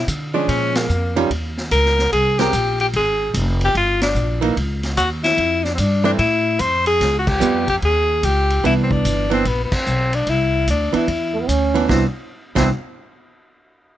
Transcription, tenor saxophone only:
0.34 D4
0.48 C#4
0.76 A#3
1.72 A#4
2.13 G#4
2.39 G4
2.81 G4
2.96 G#4
3.65 G4
3.77 F4
4.03 D4
4.97 F#4
5.24 E4
5.64 D4
5.75 C4
5.79 D4
6.05 D4
6.19 E4
6.60 C5
6.87 G#4
7.19 F#4
7.29 G4
7.70 G4
7.85 G#4
8.25 G4
8.66 E4
8.83 C4
8.92 D4
9.33 C4
9.48 B3
9.64 B3
9.74 C4
10.15 D4
10.30 E4
10.70 D4
10.97 E4
11.91 C4
12.56 C4

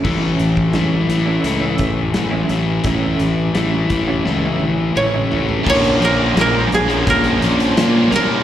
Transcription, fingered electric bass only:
0.05 A1
0.40 A1
0.75 A1
1.09 A1
1.44 C#2
1.80 A1
2.15 A1
2.50 A1
2.84 A1
3.20 A1
3.55 A1
3.90 A1
4.27 C#2
4.62 A1
4.96 A1
5.32 A1
5.67 A#1
6.02 A#1
6.37 A#1
6.73 A#1
7.07 A#1
7.42 A#1
7.77 A#2
8.12 C2

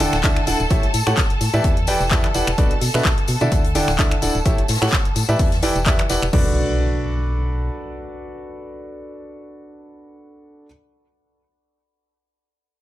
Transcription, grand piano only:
0.00 D3 D4 E4 A4 D5 G5
0.24 D3 D4 E4 A4 D5 E5
0.47 D4 E4 A4 D5 F#5
0.71 A3 E4 G4 A4 C#5 E5
1.07 A3 E4 G4 A4 C#5 F#5
1.54 E3 E4 G4 B4 D5 E5
1.88 E3 E4 G4 B4 D5 G5
2.11 E3 E4 G4 B4 D5 E5
2.35 E4 G4 B4 D5 F#5
2.58 B2 D4 F#4 A4 B4 D5
2.94 B2 D4 F#4 A4 B4 E5
3.41 D3 D4 E4 A4 D5 E5
3.75 D3 D4 E4 A4 D5 G5
3.99 D3 D4 E4 A4 D5 E5
4.22 D4 E4 A4 D5 F#5
4.45 A3 E4 G4 A4 C#5 E5
4.82 A3 E4 G4 A4 C#5 F#5
5.29 E3 E4 G4 B4 D5 E5
5.63 E3 E4 G4 B4 D5 G5
5.86 E3 E4 G4 B4 D5 E5
6.10 E4 G4 B4 D5 F#5
6.33 D4 F#4 A4 B4 D5

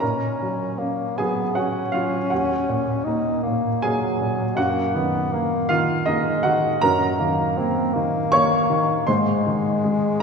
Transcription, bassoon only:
0.00 C#4
0.79 A#3
1.17 B3
1.55 C#4
3.05 D#4
3.43 A#3
3.83 F#3
4.56 A#3
4.95 B3
5.32 A#3
6.07 G#3
6.82 F#3
7.20 A#3
7.58 C4
7.94 A#3
9.07 G#3

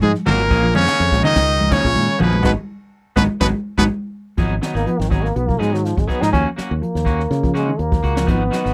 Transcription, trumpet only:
0.01 G#4
0.27 A#4
0.76 C#5
1.25 D#5
1.73 C#5
2.22 B4
2.46 B4
3.17 B4
3.41 B4
3.78 B4

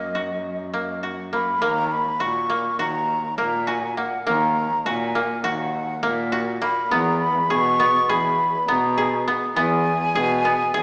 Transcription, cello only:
Already playing: F#2
1.62 D#2
2.22 A#2
2.80 D#2
3.39 A#2
4.28 D#2
4.86 A#2
5.44 D#2
6.03 A#2
6.92 E2
7.50 B2
8.09 E2
8.68 B2
9.56 E2
10.15 B2
10.74 E2

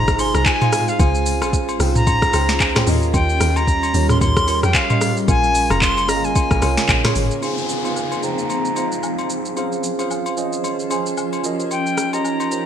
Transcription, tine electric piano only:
Already playing: D#4 F4 G#4 C5 D#5 F5
0.18 D#4 F4 G#4 C5 G#5
0.60 D#4 F4 G#4 C5 F5
0.98 C#4 F4 G#4 C5 F5
1.79 C#4 D#4 G#4 C5 G5
1.86 F4
2.32 C#4 F4 G#4 C5 G5
2.75 C#4 F4 G#4 C5 G5
2.86 C#4 F4 G4 A#4 D#5
3.93 C#4 F4 G4 A#4 C#5
4.46 C#4 F4 G4 A#4 C#5
4.89 C#4 F4 G4 A#4 D#5
5.27 C#4 F4 G#4 A#4 F5
6.07 C#4 F4 G#4 A#4 D#5
6.17 F5
6.61 C#4 F4 G#4 A#4 C#5
7.03 C#4 F4 G#4 A#4 C#5
7.41 D#4 F4 G#4 C5 F5
7.84 D#4 F4 G#4 C5 F5
8.22 D#4 F4 G#4 C5 G5
8.75 D#4 F4 G#4 C5 F5
9.56 C#4 F4 G#4 C5 F5
9.98 C#4 F4 G#4 C5 F5
10.36 C#4 F4 G#4 C5 D#5
10.89 C#4 F4 G#4 C5 G#5
11.43 C#4 F4 F#4 A#4 D#5
11.51 G4
12.12 C#4 F4 G4 A#4 D#5
12.50 C#4 F4 G4 A#4 C5

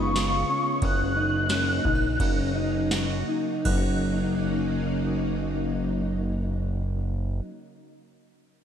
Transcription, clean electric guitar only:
Already playing: D#4
0.16 F4
0.49 C#4
0.82 C#4
1.16 D#4
1.50 C#4
1.85 D#4
2.20 C#4
2.55 D#4
2.91 F#4
3.28 D#4
3.65 F#3
3.69 A#3 C#4
3.77 F#4

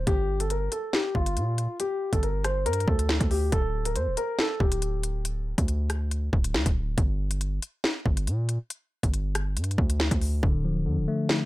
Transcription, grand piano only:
0.07 G4
0.40 A4
0.51 A#4
0.72 A4
0.94 G4
1.15 F4
1.80 G4
2.13 A4
2.23 A#4
2.44 C5
2.66 A#4
2.88 A4
3.31 G4
3.53 A4
3.85 A#4
3.95 C5
4.17 A#4
4.39 A4
4.60 G4

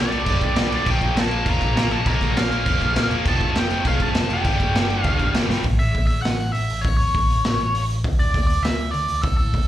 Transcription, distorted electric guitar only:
0.09 G2 D3 G3
0.24 G2 D3 G3
0.55 G2 D3 G3
0.71 G2 D3 G3
0.85 A#2 F3 A#3
1.15 A#2 F3 A#3
1.31 A#2 F3 A#3
1.46 A#2 F3 A#3
1.76 A#2 F3 A#3
1.91 A#2 F3 A#3
2.05 A#2 F3 A#3
2.36 A#2 F3 A#3
2.51 A#2 F3 A#3
2.66 A#2 F3 A#3
2.97 A#2 F3 A#3
3.11 A#2 F3 A#3
3.26 F2 C3 F3
3.55 F2 C3 F3
3.70 F2 C3 F3
3.84 F2 C3 F3
4.15 F2 C3 F3
4.29 F2 C3 F3
4.45 G2 D3 G3
4.75 G2 D3 G3
4.90 G2 D3 G3
5.04 G2 D3 G3
5.36 G2 D3 G3
5.50 G2 D3 G3

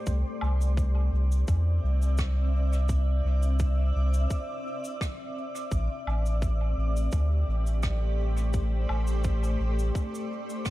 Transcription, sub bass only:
0.07 C2
0.42 C2
1.12 C2
1.48 E2
1.83 C2
3.24 C2
3.95 C2
5.71 A1
6.07 A1
6.77 A1
7.13 D2
7.48 A1
8.89 A1
9.60 A1

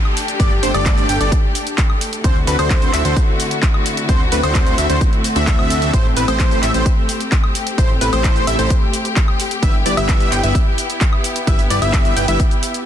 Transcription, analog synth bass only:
0.40 G1
0.63 G1
0.74 G1
1.09 G1
1.20 G1
2.24 D2
2.47 D2
2.59 D2
2.93 D2
3.05 D2
4.09 D2
4.32 D2
4.43 D2
4.78 D2
4.90 D2
5.36 D2
5.93 A1
6.16 A1
6.28 A1
6.63 A1
6.74 A1
7.78 A1
8.01 A1
8.13 A1
8.47 A1
8.59 A1
9.63 G1
9.86 G1
9.97 G1
10.32 G1
10.43 G1
11.47 G1
11.70 G1
11.82 G1
12.16 G1
12.28 G1

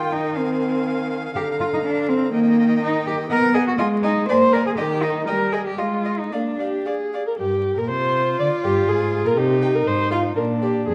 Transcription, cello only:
Already playing: F4
0.12 D#4
0.37 C4
1.36 G4
1.60 F4
1.74 D#4
1.84 D4
2.09 C4
2.32 A#3
2.81 D#4
3.07 G4
3.31 A#4
3.54 G#4
3.68 F#4
3.79 F4
4.03 D#4
4.28 C5
4.53 A#4
4.66 G#4
4.77 G4
5.02 D#4
5.27 A#4
5.52 G#4
5.67 G4
5.78 F4
6.19 D#4
6.32 D4
7.38 G2
7.77 A#2
7.89 C3
8.39 D3
8.63 G2
8.88 G#2
9.24 A#2
9.37 C3
9.86 G#2
10.36 A#2
10.86 F2

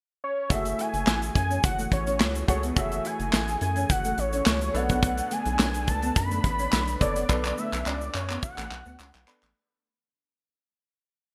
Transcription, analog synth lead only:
0.24 C#5
0.52 E5
0.80 G#5
1.36 G#5
1.65 F#5
1.93 C#5
2.50 C#5
2.78 E5
3.06 G#5
3.63 G#5
3.90 F#5
4.19 C#5
4.76 F#5
5.32 G#5
5.89 A5
6.17 B5
7.02 D5
7.59 E5
7.87 D5
8.15 C#5
8.43 F#5

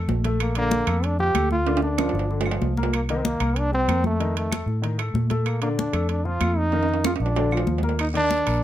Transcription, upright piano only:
Already playing: A3 A4
0.25 A3 A4
0.56 D3 D4
0.87 A3 A4
1.19 F3 F4
1.35 A3 A4
1.67 D3 D4
1.98 F3 F4
2.30 D3 D4
2.46 F3 F4
2.77 A#3 A#4
3.10 D#3 D#4
3.40 A#3 A#4
3.72 G3 G4
3.88 A#3 A#4
4.20 D#3 D#4
4.51 A3 A4
4.82 D#3 D#4
4.98 A3 A4
5.30 A3 A4
5.62 D3 D4
5.93 A3 A4
6.25 F3 F4
6.41 A3 A4
6.73 D#3 D#4
7.04 G#3 G#4
7.36 D3 D4
7.52 F3 F4
7.83 A#3 A#4
8.14 D#3 D4
8.46 A#3 A#4

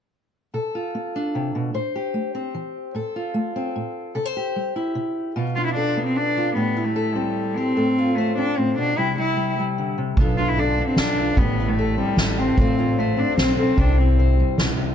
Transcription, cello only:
5.55 F4
5.66 E4
5.75 D4
6.06 C4
6.16 D4
6.56 B3
6.85 A3
7.15 G3
7.56 C4
8.17 A3
8.38 D4
8.58 C4
8.78 D4
8.98 E4
9.19 E4
10.37 F4
10.48 E4
10.59 D4
10.87 C4
10.99 D4
11.38 B3
11.68 A3
11.99 G3
12.38 C4
12.98 A3
13.19 D4
13.39 C4
13.59 C4
13.80 D4
13.98 C4

